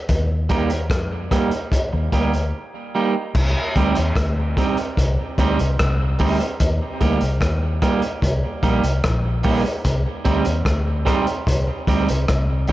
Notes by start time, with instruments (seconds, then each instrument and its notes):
0.09 fingered electric bass D#2, kick, closed hi-hat
0.49 clean electric guitar G3 A#3 D#4 G4, kick, closed hi-hat
0.70 closed hi-hat
0.90 fingered electric bass F2, kick, cross-stick, closed hi-hat
1.31 clean electric guitar G3 A#3 D#4 G4, kick, cross-stick, closed hi-hat
1.51 closed hi-hat
1.72 kick, closed hi-hat
1.93 fingered electric bass D#2, muted clean electric guitar stroke
2.12 fingered electric bass D2, clean electric guitar G3 A#3 D#4 G4, kick, closed hi-hat
2.33 closed hi-hat
2.95 clean electric guitar G3 A#3 D#4 G4
3.35 fingered electric bass C2, kick, crash
3.76 fingered electric bass D2, clean electric guitar G3 C4 D#4 G4, kick, closed hi-hat
3.95 fingered electric bass D#2, closed hi-hat
4.16 fingered electric bass D2, kick, cross-stick, closed hi-hat
4.57 clean electric guitar G3 C4 D#4 G4, kick, closed hi-hat
4.77 closed hi-hat
4.97 fingered electric bass C2, kick, closed hi-hat
5.38 fingered electric bass D2, clean electric guitar G3 C4 D#4 G4, kick, closed hi-hat
5.59 fingered electric bass C2, closed hi-hat
5.79 fingered electric bass C2, kick, cross-stick, closed hi-hat
6.19 fingered electric bass D2, clean electric guitar G3 C4 D#4 G4, kick, open hi-hat
6.40 muted clean electric guitar stroke, closed hi-hat
6.60 fingered electric bass D#2, kick, closed hi-hat
7.01 fingered electric bass D2, clean electric guitar G3 A#3 D#4 G4, kick, closed hi-hat
7.21 fingered electric bass C2, closed hi-hat
7.41 fingered electric bass D#2, kick, cross-stick, closed hi-hat
7.82 clean electric guitar G3 A#3 D#4 G4, kick, cross-stick, closed hi-hat
8.02 closed hi-hat
8.22 fingered electric bass C2, kick, closed hi-hat
8.63 fingered electric bass A#1, clean electric guitar G3 A#3 D#4 G4, kick, closed hi-hat
8.84 fingered electric bass C2, closed hi-hat
9.04 fingered electric bass A#1, kick, cross-stick, closed hi-hat
9.43 clean electric guitar G3 A#3 D#4 G4, kick, open hi-hat
9.65 muted clean electric guitar stroke, closed hi-hat
9.85 fingered electric bass C2, kick, closed hi-hat
10.25 fingered electric bass D2, clean electric guitar G3 C4 D#4 G4, kick, closed hi-hat
10.45 fingered electric bass D#2, closed hi-hat
10.65 fingered electric bass D2, kick, cross-stick, closed hi-hat
11.05 clean electric guitar G3 C4 D#4 G4, kick, cross-stick, closed hi-hat
11.27 closed hi-hat
11.47 fingered electric bass C2, kick, closed hi-hat
11.87 fingered electric bass D2, clean electric guitar G3 C4 D#4 G4, kick, closed hi-hat
12.09 fingered electric bass C2, closed hi-hat
12.28 fingered electric bass C2, kick, cross-stick, closed hi-hat
12.67 clean electric guitar G3 C4, kick, open hi-hat